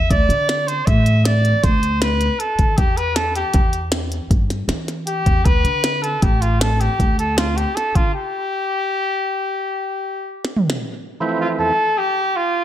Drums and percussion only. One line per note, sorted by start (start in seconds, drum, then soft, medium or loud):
0.11 kick medium
0.11 closed hi-hat medium
0.30 closed hi-hat soft
0.49 snare medium
0.49 closed hi-hat medium
0.68 closed hi-hat soft
0.87 kick medium
0.87 closed hi-hat medium
1.06 closed hi-hat medium
1.25 snare medium
1.25 closed hi-hat medium
1.45 closed hi-hat soft
1.64 kick medium
1.64 snare soft
1.64 closed hi-hat medium
1.83 closed hi-hat soft
2.02 snare medium
2.02 closed hi-hat medium
2.21 closed hi-hat soft
2.40 closed hi-hat medium
2.59 kick medium
2.59 closed hi-hat soft
2.78 kick medium
2.78 closed hi-hat medium
2.98 closed hi-hat soft
3.16 snare medium
3.16 closed hi-hat medium
3.36 closed hi-hat medium
3.54 kick medium
3.54 closed hi-hat medium
3.73 closed hi-hat medium
3.92 snare medium
3.92 closed hi-hat medium
4.12 closed hi-hat soft
4.31 kick medium
4.31 closed hi-hat medium
4.50 snare soft
4.50 closed hi-hat soft
4.69 snare medium
4.69 closed hi-hat medium
4.88 snare soft
4.88 closed hi-hat soft
5.07 closed hi-hat medium
5.26 kick medium
5.26 closed hi-hat soft
5.46 kick medium
5.46 closed hi-hat medium
5.65 closed hi-hat medium
5.84 snare medium
5.84 closed hi-hat medium
6.04 closed hi-hat soft
6.22 kick medium
6.22 closed hi-hat medium
6.42 closed hi-hat medium
6.61 snare loud
6.61 closed hi-hat medium
6.81 closed hi-hat medium
7.00 kick medium
7.00 closed hi-hat medium
7.19 closed hi-hat medium
7.38 snare medium
7.38 closed hi-hat medium
7.58 closed hi-hat soft
7.77 snare soft
7.77 closed hi-hat medium
7.95 kick medium
7.95 closed hi-hat soft
10.45 snare soft
10.57 mid tom soft
10.70 snare medium